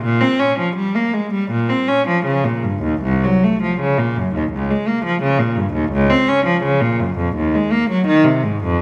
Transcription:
cello
0.02 A#2
0.21 C4
0.39 C#4
0.59 F3
0.76 G3
0.96 A#3
1.14 G#3
1.33 G3
1.51 A#2
1.69 C4
1.88 C#4
2.07 F3
2.25 C#3
2.44 A#2
2.63 G2
2.82 D#2
3.01 C2
3.24 F#3
3.44 A3
3.62 F3
3.80 C#3
3.98 A#2
4.16 F#2
4.34 D#2
4.52 C#2
4.71 G#3
4.87 A#3
5.05 F3
5.22 C#3
5.39 A#2
5.56 G2
5.73 D#2
5.92 C#2
6.10 C4
6.28 C#4
6.45 F3
6.63 C#3
6.81 A#2
6.99 F#2
7.17 F2
7.36 D#2
7.55 G#3
7.72 A#3
7.90 F#3
8.07 D#3
8.25 C3
8.44 G#2
8.64 F2

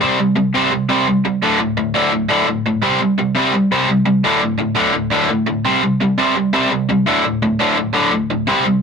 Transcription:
overdriven electric guitar
0.01 C3 G3 C4
0.19 C3 G3
0.36 C3 G3
0.54 C3 G3 C4
0.71 C3 G3
0.89 C3 G3 C4
1.07 C3 G3
1.25 C3 G3
1.43 D2 A2 D3
1.60 D2 A2
1.77 D2 A2
1.94 D2 A2 D3
2.12 D2 A2
2.29 D2 A2 D3
2.47 D2 A2
2.66 D2 A2
2.82 C3 G3 C4
3.00 C3 G3
3.18 C3 G3
3.35 C3 G3 C4
3.54 C3 G3
3.72 C3 G3 C4
3.89 C3 G3
4.06 C3 G3
4.24 D2 A2 D3
4.42 D2 A2
4.59 D2 A2
4.76 D2 A2 D3
4.93 D2 A2
5.11 D2 A2 D3
5.30 D2 A2
5.47 D2 A2
5.65 C3 G3 C4
5.83 C3 G3
6.01 C3 G3
6.18 C3 G3 C4
6.36 C3 G3
6.53 C3 G3 C4
6.71 C3 G3
6.89 C3 G3
7.06 D2 A2 D3
7.24 D2 A2
7.42 D2 A2
7.60 D2 A2 D3
7.78 D2 A2
7.94 D2 A2 D3
8.12 D2 A2
8.31 D2 A2
8.47 C3 G3 C4
8.65 C3 G3

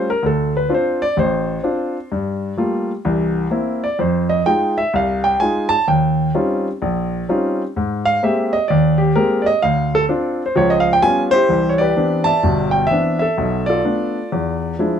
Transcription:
grand piano
0.10 A#4
0.23 D2 A4
0.57 B4
0.69 C4 D4 F4
0.74 C5
1.02 D5
1.17 A1 C5
1.63 C4 D4 F4
2.12 G2
2.57 G3 A3 A#3 F4
3.05 C2 E3
3.51 A#3 C4 E4
3.84 D5
3.99 F2 C5
4.29 D#5
4.46 G#3 D#4 F4 G5
4.78 E5
4.93 C2 F5
5.24 G5
5.40 G#3 D#4 F4 G#5
5.69 A5
5.88 D#2 G5
6.34 G3 C4 C#4 D#4 F4
6.82 A#1
7.29 G3 C4 C#4 D#4 F4
7.76 G#2
8.05 F5
8.23 G#3 A#3 C4 G4 E5
8.53 D#5
8.68 D#2 D5
8.98 G4
9.16 G#3 A#3 C4 G4 A#4
9.42 D5
9.46 D#5
9.62 D2 F5
9.95 A4
10.09 C4 D4 F4
10.46 C5
10.56 C#2 F3 C#5
10.70 D#5
10.80 F5
10.93 G5
11.02 G3 B3 C#4 F4 G#5
11.31 E4 G4 C5
11.49 C2 E3
11.69 C#5
11.78 G4 B4 D5
11.96 E3 B3 C4 D4
12.24 D5 E5 A5
12.43 G1 B2
12.71 G5
12.87 E3 E5
12.91 B3 C4 D4
13.19 A4 E5
13.37 B1 B2
13.66 F4 A4 D5
13.84 A3 B3 D4
14.32 E2
14.79 F3 G#3 D4 E4

